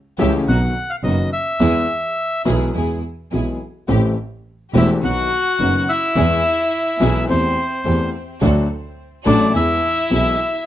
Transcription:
0.19 0.43 C#2 medium
0.19 0.43 C#3 medium
0.19 0.43 E3 medium
0.19 0.43 A3 medium
0.19 0.43 C#4 medium
0.19 0.43 G4 medium
0.19 0.33 E5 medium
0.47 0.71 B1 medium
0.47 0.72 B2 medium
0.47 0.71 D#3 soft
0.47 0.72 F#3 soft
0.47 0.71 B3 medium
0.47 0.72 B3 soft
0.47 0.71 D#4 soft
0.47 0.72 F#4 medium
0.47 0.91 F#5 medium
0.90 0.96 F5 medium
1.04 1.28 F#1 medium
1.04 1.28 F#2 medium
1.04 1.28 D#3 soft
1.04 1.27 F#3 soft
1.04 1.28 B3 soft
1.04 1.28 D#4 soft
1.04 1.28 F#4 soft
1.04 1.28 F#4 medium
1.04 1.30 D#5 medium
1.33 2.42 E5 medium
1.60 1.84 E2 medium
1.60 1.85 E2 medium
1.60 1.84 E3 medium
1.60 1.84 G#3 medium
1.60 1.84 B3 medium
1.60 1.85 B3 medium
1.60 1.85 E4 medium
1.60 1.84 G#4 medium
1.60 1.85 G#4 medium
2.45 2.70 B1 medium
2.45 2.70 B2 medium
2.45 2.70 E3 medium
2.45 2.70 G#3 medium
2.45 2.70 B3 medium
2.45 2.70 E4 medium
2.45 2.70 G#4 medium
2.74 2.99 E2 medium
2.74 2.99 E3 medium
2.74 2.99 G#3 soft
2.74 2.98 B3 soft
2.74 2.99 B3 soft
2.74 2.99 E4 soft
2.74 2.98 G#4 soft
2.74 2.99 G#4 medium
3.32 3.56 B1 medium
3.32 3.56 B2 soft
3.32 3.56 E3 soft
3.32 3.56 G#3 soft
3.32 3.56 B3 soft
3.32 3.56 E4 soft
3.32 3.56 G#4 soft
3.32 3.57 G#4 medium
3.88 4.12 A1 medium
3.88 4.13 A1 medium
3.88 4.13 A2 medium
3.88 4.12 E3 medium
3.88 4.13 A3 medium
3.88 4.13 C4 medium
3.88 4.13 G4 medium
4.73 4.98 E1 medium
4.73 4.98 E2 medium
4.73 4.98 E3 medium
4.73 4.98 A3 medium
4.73 4.98 C4 medium
4.73 4.89 E4 medium
4.73 4.98 G4 medium
4.78 4.90 E5 medium
5.02 5.27 B1 medium
5.02 5.27 B2 medium
5.02 5.26 D#3 soft
5.02 5.27 F#3 soft
5.02 5.26 B3 soft
5.02 5.27 B3 soft
5.02 5.26 D#4 soft
5.02 5.26 F#4 soft
5.02 5.27 F#4 soft
5.02 5.85 F#4 medium
5.02 5.91 F#5 medium
5.59 5.83 F#1 medium
5.59 5.84 F#1 medium
5.59 5.84 F#2 medium
5.59 5.83 D#3 soft
5.59 5.83 F#3 soft
5.59 5.83 B3 soft
5.59 5.84 B3 soft
5.59 5.83 D#4 soft
5.59 5.83 F#4 soft
5.59 5.84 F#4 medium
5.89 7.26 E4 medium
5.89 7.25 E5 loud
6.16 6.40 E2 medium
6.16 6.40 E3 medium
6.16 6.40 G#3 medium
6.16 6.40 B3 medium
6.16 6.40 E4 medium
6.16 6.40 G#4 medium
7.00 7.24 B1 medium
7.00 7.24 B2 medium
7.00 7.24 E3 medium
7.00 7.24 G#3 medium
7.00 7.24 B3 medium
7.00 7.24 E4 medium
7.00 7.24 G#4 medium
7.29 7.53 E2 medium
7.29 7.53 E3 medium
7.29 7.53 A3 soft
7.29 8.09 C4 medium
7.29 7.52 C4 medium
7.29 7.53 C4 soft
7.29 7.53 G4 soft
7.29 7.53 G4 medium
7.29 7.53 A4 medium
7.29 8.10 C5 medium
7.85 8.09 E2 medium
7.85 8.09 E3 medium
7.85 8.09 A3 soft
7.85 8.09 C4 soft
7.85 8.09 G4 soft
7.85 8.09 G4 medium
7.85 8.09 A4 medium
8.41 8.65 D2 medium
8.41 8.66 D2 medium
8.41 8.65 D3 medium
8.41 8.65 F#3 medium
8.41 8.65 A3 medium
8.41 8.65 D4 medium
8.41 8.65 F#4 medium
8.41 8.65 A4 medium
9.26 9.49 A1 medium
9.26 9.50 A1 loud
9.26 9.50 A2 medium
9.26 9.49 F#3 medium
9.26 9.50 A3 medium
9.26 9.50 D4 medium
9.26 9.52 D4 medium
9.26 9.50 F#4 medium
9.26 9.50 A4 medium
9.26 9.52 D5 medium
9.53 9.78 E2 medium
9.53 9.78 E3 medium
9.53 9.78 G#3 soft
9.53 9.77 B3 soft
9.53 9.78 B3 soft
9.53 10.63 E4 medium
9.53 9.78 E4 soft
9.53 9.78 G#4 medium
9.53 10.64 E5 loud
10.10 10.34 B1 medium
10.10 10.35 B1 medium
10.10 10.34 B2 medium
10.10 10.34 E3 soft
10.10 10.34 G#3 soft
10.10 10.34 B3 soft
10.10 10.35 B3 soft
10.10 10.34 E4 soft
10.10 10.35 G#4 medium

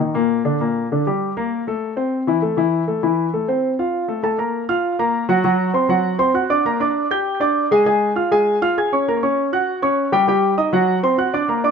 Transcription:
0.00 0.12 D#3 medium
0.00 0.13 D#4 medium
0.14 0.40 A#2 medium
0.14 0.40 A#3 medium
0.45 0.58 D3 medium
0.45 0.58 D4 medium
0.60 0.85 A#2 medium
0.60 0.86 A#3 medium
0.92 1.04 D3 medium
0.92 1.04 D4 medium
1.07 1.31 G3 medium
1.07 1.32 G4 medium
1.37 1.62 A#3 medium
1.37 1.61 A#4 medium
1.67 1.92 A3 medium
1.67 1.92 A4 medium
1.97 2.21 C4 medium
1.97 2.22 C5 medium
2.27 2.40 E3 medium
2.27 2.40 E4 medium
2.42 2.55 A3 medium
2.42 2.55 A4 medium
2.57 2.82 E3 medium
2.57 2.82 E4 medium
2.87 3.00 A3 medium
2.87 3.00 A4 medium
3.03 3.28 E3 medium
3.03 3.28 E4 medium
3.33 3.46 A3 medium
3.33 3.46 A4 medium
3.48 3.73 C4 medium
3.48 3.73 C5 medium
3.79 4.03 F4 medium
3.79 4.04 F5 medium
4.08 4.21 A3 medium
4.08 4.21 A4 medium
4.23 4.36 A3 medium
4.23 4.36 A4 medium
4.23 4.36 A5 medium
4.38 4.63 A#3 medium
4.38 4.63 A#4 medium
4.38 4.64 A#5 medium
4.69 4.94 F4 medium
4.69 4.94 F5 medium
4.69 4.94 F6 medium
4.99 5.24 A#3 medium
4.99 5.24 A#4 medium
4.99 5.24 A#5 medium
5.29 5.41 F#3 medium
5.29 5.41 F#4 medium
5.29 5.42 F#5 medium
5.44 5.69 F#3 medium
5.44 5.69 F#4 medium
5.44 5.70 F#5 medium
5.74 5.86 C4 medium
5.74 5.87 C5 medium
5.74 5.87 C6 medium
5.89 6.14 F#3 medium
5.89 6.14 F#4 medium
5.89 6.14 F#5 medium
6.19 6.31 C4 medium
6.19 6.32 C5 medium
6.19 6.32 C6 medium
6.34 6.47 F#4 medium
6.34 6.47 F#5 medium
6.34 6.47 F#6 medium
6.50 6.62 D4 medium
6.50 6.62 D5 medium
6.50 6.63 D6 medium
6.65 6.78 A#3 medium
6.65 6.78 A#4 medium
6.65 6.78 A#5 medium
6.80 7.05 D4 medium
6.80 7.05 D5 medium
6.80 7.05 D6 medium
7.11 7.35 G4 medium
7.11 7.35 G5 medium
7.11 7.36 G6 medium
7.40 7.65 D4 medium
7.40 7.65 D5 medium
7.40 7.66 D6 medium
7.71 7.83 G#3 medium
7.71 7.84 G#4 medium
7.71 7.84 G#5 medium
7.86 8.11 G#3 medium
7.86 8.11 G#4 medium
7.86 8.11 G#5 medium
8.16 8.28 F4 medium
8.16 8.28 F5 medium
8.16 8.29 F6 medium
8.31 8.56 G#3 medium
8.31 8.56 G#4 medium
8.31 8.57 G#5 medium
8.62 8.74 F4 medium
8.62 8.74 F5 medium
8.62 8.74 F6 medium
8.77 8.90 G#4 medium
8.77 8.90 G#5 medium
8.77 8.90 G#6 medium
8.93 9.05 C#4 medium
8.93 9.05 C#5 medium
8.93 9.05 C#6 medium
9.08 9.20 A#3 medium
9.08 9.20 A#4 medium
9.08 9.20 A#5 medium
9.23 9.47 C#4 medium
9.23 9.47 C#5 medium
9.23 9.47 C#6 medium
9.53 9.77 F#4 medium
9.53 9.78 F#5 medium
9.53 9.77 F#6 medium
9.82 10.07 C#4 medium
9.82 10.07 C#5 medium
9.82 10.07 C#6 medium
10.12 10.25 G3 medium
10.12 10.25 G4 medium
10.12 10.25 G5 medium
10.28 10.52 G3 medium
10.28 10.53 G4 medium
10.28 10.53 G5 medium
10.58 10.70 D#4 medium
10.58 10.70 D#5 medium
10.58 10.70 D#6 medium
10.73 10.98 F#3 medium
10.73 10.98 F#4 medium
10.73 10.98 F#5 medium
11.03 11.16 C4 medium
11.03 11.16 C5 medium
11.03 11.16 C6 medium
11.18 11.30 F#4 medium
11.18 11.31 F#5 medium
11.18 11.31 F#6 medium
11.34 11.46 D4 medium
11.34 11.46 D5 medium
11.34 11.46 D6 medium
11.48 11.61 A#3 medium
11.48 11.61 A#4 medium
11.48 11.61 A#5 medium
11.64 11.71 D4 medium
11.64 11.71 D5 medium
11.64 11.71 D6 medium

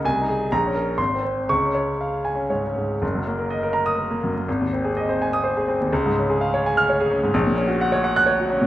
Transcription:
0.04 0.49 C2 medium
0.04 0.42 G#5 medium
0.21 0.45 D#4 medium
0.29 0.51 G#4 medium
0.52 0.97 A#1 medium
0.52 0.89 A#5 medium
0.67 0.92 C#4 medium
0.75 0.98 A#4 medium
0.98 1.47 G#1 medium
0.98 1.38 C6 medium
1.15 1.42 C4 soft
1.23 1.49 C5 soft
1.49 2.98 C#2 medium
1.49 1.90 C#6 medium
1.66 1.93 C#4 soft
1.75 2.15 C#5 soft
2.01 2.41 F5 soft
2.25 2.66 G#5 medium
2.35 2.62 C#4 soft
2.50 2.74 G#2 soft
2.50 2.91 C#5 soft
2.67 2.95 C#4 soft
2.76 3.02 G#2 soft
3.02 4.43 F#1 medium
3.15 3.34 F#2 medium
3.27 3.46 A#3 medium
3.39 3.58 A#4 soft
3.50 3.70 D#5 medium
3.63 3.82 A#4 medium
3.73 3.93 A#5 medium
3.86 4.05 D#6 medium
3.99 4.18 A#4 medium
4.11 4.30 A#3 medium
4.24 4.43 F#2 medium
4.36 4.48 A#3 soft
4.48 5.87 G#1 medium
4.61 4.79 D#2 medium
4.73 4.91 C4 medium
4.84 5.03 G#4 medium
4.97 5.15 D#5 medium
5.09 5.27 C5 medium
5.22 5.39 G#5 medium
5.33 5.51 D#6 medium
5.44 5.62 C5 medium
5.57 5.75 G#4 medium
5.68 5.87 C4 medium
5.81 5.92 D#2 medium
5.93 7.30 C#2 medium
6.06 6.24 G#2 medium
6.19 6.36 C#4 medium
6.30 6.48 G#4 medium
6.41 6.59 F5 medium
6.54 6.72 C#5 medium
6.66 6.84 G#5 medium
6.77 6.95 F6 medium
6.90 7.07 C#5 medium
7.00 7.18 G#4 medium
7.11 7.29 C#4 medium
7.23 7.34 G#2 medium
7.34 8.67 A#1 medium
7.47 7.64 A#2 medium
7.57 7.75 C#4 medium
7.67 7.86 F#4 medium
7.81 7.99 F#5 medium
7.92 8.10 C#5 medium
8.04 8.22 F#5 medium
8.16 8.34 F#6 medium
8.26 8.45 C#5 medium
8.39 8.57 F#4 medium
8.50 8.67 C#4 medium
8.61 8.67 A#2 medium

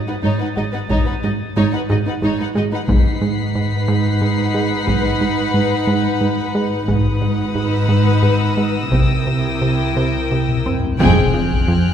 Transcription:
0.00 0.10 G#2 medium
0.00 2.53 D#6 soft
0.00 2.52 A6 soft
0.07 0.14 G#2 soft
0.07 0.14 D#4 soft
0.07 0.14 B4 soft
0.07 0.14 F#5 soft
0.22 0.30 G#1 soft
0.22 0.44 G#2 medium
0.22 0.31 G#2 soft
0.22 0.38 D#4 medium
0.22 0.39 D#4 soft
0.22 0.39 C#5 soft
0.39 0.48 G#2 soft
0.39 0.47 D#4 soft
0.39 0.46 B4 soft
0.39 0.47 F#5 soft
0.56 0.64 G#1 soft
0.56 0.64 G#2 soft
0.56 0.77 G#3 soft
0.56 0.64 D#4 soft
0.56 0.62 F#4 soft
0.56 0.63 D#5 soft
0.72 0.81 G#2 soft
0.72 0.80 D#4 soft
0.72 0.79 B4 soft
0.72 0.80 F#5 soft
0.89 0.97 G#1 soft
0.89 1.10 G#2 medium
0.89 0.98 G#2 medium
0.89 1.05 D#4 soft
0.89 1.06 D#4 soft
0.89 1.05 C#5 soft
0.89 taiko medium
1.06 1.14 G#2 soft
1.06 1.14 D#4 soft
1.06 1.12 B4 soft
1.06 1.13 F#5 soft
1.23 1.30 G#1 soft
1.23 1.43 G#2 medium
1.23 1.30 G#2 soft
1.23 1.30 D#4 soft
1.23 1.30 F#4 soft
1.23 1.29 D#5 soft
1.56 1.63 G#1 medium
1.56 1.76 G#2 medium
1.56 1.64 G#2 medium
1.56 1.72 D#4 medium
1.56 1.72 C#5 medium
1.73 1.80 G#2 soft
1.73 1.79 D#4 soft
1.73 1.81 B4 soft
1.73 1.79 F#5 soft
1.89 1.96 G#1 soft
1.89 2.09 G#2 medium
1.89 1.97 G#2 soft
1.89 1.96 D#4 soft
1.89 1.97 F#4 soft
1.89 1.97 D#5 soft
2.06 2.13 G#2 soft
2.06 2.12 D#4 soft
2.06 2.13 B4 soft
2.06 2.14 F#5 soft
2.22 2.29 G#1 medium
2.22 2.42 G#2 soft
2.22 2.29 G#2 medium
2.22 2.37 D#4 soft
2.22 2.38 D#4 medium
2.22 2.38 C#5 medium
2.39 2.45 G#2 soft
2.39 2.45 D#4 soft
2.39 2.46 B4 soft
2.39 2.47 F#5 soft
2.55 2.62 G#1 soft
2.55 2.62 G#2 soft
2.55 2.75 G#3 soft
2.55 2.62 D#4 soft
2.55 2.62 F#4 soft
2.55 2.63 D#5 soft
2.71 2.78 G#2 soft
2.71 2.78 D#4 medium
2.71 2.78 B4 medium
2.71 2.80 F#5 medium
2.88 6.84 G#1 soft
2.88 6.84 G#2 medium
2.88 3.08 G#2 medium
2.88 6.84 D#4 medium
2.88 6.84 B4 medium
2.88 6.85 F#5 medium
2.88 6.51 B6 soft
2.88 5.84 C7 soft
2.88 taiko medium
3.21 3.41 G#2 medium
3.55 3.75 G#2 medium
3.88 4.08 G#2 medium
4.21 4.41 G#2 medium
4.54 4.74 G#3 medium
4.87 5.07 G#2 medium
4.87 taiko medium
5.21 5.41 G#2 medium
5.54 5.74 G#2 medium
5.87 6.08 G#2 medium
6.21 6.41 G#2 medium
6.55 6.75 G#3 medium
6.88 8.88 G#1 medium
6.88 7.08 G#2 medium
6.88 8.88 G#2 medium
6.88 8.88 D#4 medium
6.88 8.89 B4 medium
6.88 8.89 F#5 medium
6.88 10.62 D#6 soft
6.88 taiko medium
7.22 7.42 G#2 medium
7.55 7.76 G#2 medium
7.55 10.62 E6 soft
7.89 8.09 G#2 medium
8.22 8.44 G#2 medium
8.22 10.61 A#6 soft
8.57 8.78 G#3 medium
8.92 10.80 C2 soft
8.92 9.13 C3 medium
8.92 10.80 C3 medium
8.92 10.76 E4 soft
8.92 10.76 A#4 soft
8.92 10.76 G5 soft
8.92 taiko medium
9.27 9.48 C3 medium
9.62 9.83 C3 medium
9.97 10.17 C3 medium
10.31 10.52 C3 medium
10.48 taiko mid medium
10.66 10.87 C4 soft
10.66 taiko low-mid medium
10.84 taiko low medium
10.99 11.94 F1 medium
10.99 11.20 F2 loud
10.99 11.94 F2 medium
10.99 11.31 G#3 medium
10.99 11.94 C4 medium
10.99 11.94 G#4 medium
10.99 11.32 G#4 medium
10.99 11.94 G5 medium
10.99 11.94 F6 soft
10.99 11.94 F#6 soft
10.99 taiko loud
10.99 impact medium
11.18 taiko mid soft
11.34 11.54 F2 medium
11.52 taiko medium
11.68 11.88 F2 medium

